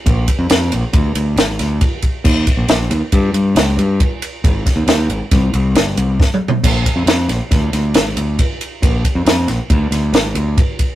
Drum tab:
CC |------------------------------|x-----------------------------|------------------------------|x-----------------------------|
RD |x--x--x--x--x--x--x--x--x--x--|---x--x--x--x--x--x--x--x--x--|x--x--x--x--x--x--x--x--------|x--x--x--x--x--x--x--x--x--x--|
SD |------o-----------o--o--------|------o-----------o-----------|---o--o-----o-----o-----o-----|------o--o--o--o--o-----------|
T2 |------------------------------|------------------------------|--------------------------o---|------------------------------|
FT |------------------------------|------------------------------|----------------------------o-|------------------------------|
BD |o--o--------o-----------o--o--|o--o--------o-----------o-----|o--o--------o-----------o-----|o--o--------o-----------o-----|

CC |------------------------------|
RD |x--x--x--x--x--x--x--x--x--x--|
SD |------o--o-----o--o-----------|
T2 |------------------------------|
FT |------------------------------|
BD |o--o--------o-----------o--o--|